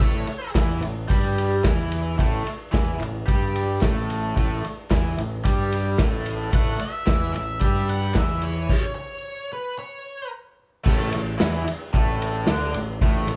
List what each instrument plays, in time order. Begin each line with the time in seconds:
0.00 picked electric bass A1, overdriven electric guitar A2 A3, lead electric guitar C#5, kick
0.27 muted picked electric bass stroke, muted overdriven electric guitar stroke, ride
0.55 picked electric bass E2, overdriven electric guitar E3 E4, kick, snare, clap, ride
0.80 picked electric bass A1, overdriven electric guitar A2, ride
1.08 picked electric bass G2, overdriven electric guitar G3 G4, kick, ride
1.38 ride
1.63 picked electric bass E2, overdriven electric guitar E3 E4, kick, snare, clap, ride
1.92 ride
2.18 picked electric bass A1, overdriven electric guitar A2 A3, kick, ride
2.45 muted picked electric bass stroke, muted overdriven electric guitar stroke, ride
2.72 picked electric bass E2, overdriven electric guitar E3 E4, kick, snare, clap, ride
3.00 picked electric bass A1, overdriven electric guitar A2, clap, ride
3.26 picked electric bass G2, overdriven electric guitar G3 G4, kick, ride
3.56 ride
3.81 picked electric bass A1, overdriven electric guitar A2 A3, kick, snare, clap, ride
4.10 ride
4.35 picked electric bass A1, overdriven electric guitar A2 A3, kick, ride
4.62 muted overdriven electric guitar stroke, muted picked electric bass stroke, ride
4.90 picked electric bass E2, overdriven electric guitar E3 E4, kick, snare, clap, ride
5.18 picked electric bass A1, overdriven electric guitar A2, ride
5.44 picked electric bass G2, overdriven electric guitar G3 G4, kick, ride
5.72 ride
5.98 picked electric bass A1, overdriven electric guitar A2 A3, kick, snare, clap, ride
6.26 ride
6.51 picked electric bass A1, overdriven electric guitar A2 A3, lead electric guitar F#5, kick, ride
6.79 lead electric guitar E5, muted overdriven electric guitar stroke, muted picked electric bass stroke, ride
7.06 picked electric bass E2, overdriven electric guitar E3 E4, kick, snare, clap, ride
7.33 picked electric bass A1, overdriven electric guitar A2, lead electric guitar E5, clap, ride
7.60 picked electric bass G2, overdriven electric guitar G3 G4, lead electric guitar E5, kick, ride
7.89 lead electric guitar F#5, ride
8.14 picked electric bass E2, overdriven electric guitar E3 E4, lead electric guitar E5, kick, snare, clap, ride
8.42 lead electric guitar C#5, ride
8.69 kick, crash
8.96 lead electric guitar C#5
9.53 lead electric guitar B4
9.79 lead electric guitar C#5
10.84 picked electric bass A1, overdriven electric guitar A2 A3, kick, crash
11.11 picked electric bass A1, overdriven electric guitar A2, ride
11.38 picked electric bass E2, overdriven electric guitar E3 E4, snare, ride
11.66 muted overdriven electric guitar stroke, muted picked electric bass stroke, ride
11.93 picked electric bass A1, overdriven electric guitar A2 A3, kick, ride
12.22 ride
12.47 picked electric bass D2, overdriven electric guitar D3 D4, snare, ride
12.74 picked electric bass A1, overdriven electric guitar A2, ride
13.01 picked electric bass A1, overdriven electric guitar A2 A3, kick, ride
13.27 picked electric bass A1, overdriven electric guitar A2, ride